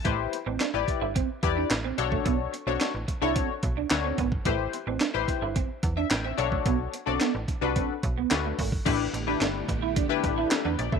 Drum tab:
CC |----------------|----------------|----------------|----------------|
HH |x-x-x-x-x-x-x-x-|x-x-x-x-x-x-x-x-|x-x-x-x-x-x-x-x-|x-x-x-x-x-x-x-o-|
CP |----x-------x---|----x-------x---|----x-------x---|----x-------x---|
SD |----o-------o---|----o-------o---|----o-------o---|----o-------o---|
BD |o-----o-o-o----o|o-----o-o-o---oo|o-----o-o-o----o|o-----o-o-o---oo|

CC |x---------------|
HH |x-x-x-x-x-x-x-x-|
CP |----x-------x---|
SD |----o-------o---|
BD |o-----o-o-o----o|